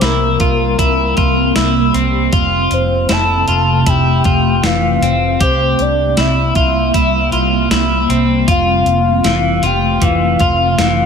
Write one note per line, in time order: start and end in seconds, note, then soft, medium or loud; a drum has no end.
0.00 0.36 C2 medium
0.00 2.29 C3 medium
0.00 2.30 G3 medium
0.00 2.30 A#3 medium
0.00 11.06 C4 medium
0.00 0.40 E4 medium
0.00 snare medium
0.00 closed hi-hat medium
0.04 1.95 A#4 medium
0.40 0.74 C2 medium
0.40 0.78 F4 medium
0.40 kick medium
0.40 closed hi-hat soft
0.79 1.13 C2 medium
0.79 1.17 E4 medium
0.79 kick medium
0.79 closed hi-hat medium
1.17 1.51 C2 medium
1.17 1.55 F4 medium
1.17 kick medium
1.17 closed hi-hat soft
1.56 1.90 C2 medium
1.56 1.94 E4 medium
1.56 snare loud
1.56 closed hi-hat medium
1.94 2.28 C2 medium
1.94 2.33 C4 medium
1.94 closed hi-hat soft
2.33 2.66 F1 medium
2.33 5.37 C3 medium
2.33 5.37 A3 medium
2.33 3.09 F4 medium
2.33 kick loud
2.33 closed hi-hat medium
2.71 3.05 F1 medium
2.71 3.13 C5 medium
2.71 closed hi-hat soft
3.09 3.43 F1 medium
3.09 3.48 E4 medium
3.09 3.91 A5 loud
3.09 snare medium
3.09 closed hi-hat medium
3.48 3.82 F1 medium
3.48 3.86 F4 medium
3.48 closed hi-hat medium
3.86 4.20 F1 medium
3.86 4.25 E4 medium
3.86 4.67 G5 medium
3.86 kick medium
3.86 closed hi-hat medium
4.24 4.59 F1 medium
4.24 4.63 F4 medium
4.24 kick medium
4.24 closed hi-hat soft
4.63 4.97 F1 medium
4.63 5.02 E3 medium
4.63 5.41 F5 loud
4.63 snare loud
4.63 closed hi-hat medium
5.02 5.36 F1 medium
5.02 5.40 C4 medium
5.02 closed hi-hat medium
5.40 5.74 C2 medium
5.40 11.06 C3 medium
5.40 8.45 G3 medium
5.40 8.45 A#3 medium
5.40 6.17 G4 medium
5.40 5.83 C5 medium
5.40 kick loud
5.40 closed hi-hat medium
5.79 6.13 C2 medium
5.79 6.22 D5 loud
5.79 closed hi-hat soft
6.17 6.51 C2 medium
6.17 6.56 E4 medium
6.17 7.73 E5 medium
6.17 snare medium
6.17 closed hi-hat medium
6.55 6.89 C2 medium
6.55 6.94 F4 medium
6.55 kick medium
6.55 closed hi-hat soft
6.94 7.28 C2 medium
6.94 7.32 E4 medium
6.94 kick medium
6.94 closed hi-hat medium
7.32 7.66 C2 medium
7.32 7.71 F4 medium
7.32 closed hi-hat soft
7.71 8.05 C2 medium
7.71 8.09 E4 medium
7.71 snare loud
7.71 closed hi-hat medium
8.09 8.43 C2 medium
8.09 8.48 C4 medium
8.09 closed hi-hat medium
8.48 8.82 F1 medium
8.48 11.06 A3 medium
8.48 9.25 F4 medium
8.48 9.67 F5 loud
8.48 kick loud
8.48 closed hi-hat medium
8.86 9.20 F1 medium
8.86 closed hi-hat soft
9.24 9.59 F1 medium
9.24 9.63 E3 medium
9.24 snare medium
9.24 closed hi-hat medium
9.63 9.97 F1 medium
9.63 10.02 F4 medium
9.63 10.06 G5 medium
9.63 closed hi-hat soft
10.02 10.35 F1 medium
10.02 10.40 E3 medium
10.02 11.06 F5 loud
10.02 kick medium
10.02 closed hi-hat medium
10.39 10.74 F1 medium
10.39 10.79 F4 medium
10.39 kick medium
10.39 closed hi-hat soft
10.78 11.06 F1 medium
10.78 11.06 E3 medium
10.78 snare loud
10.78 closed hi-hat medium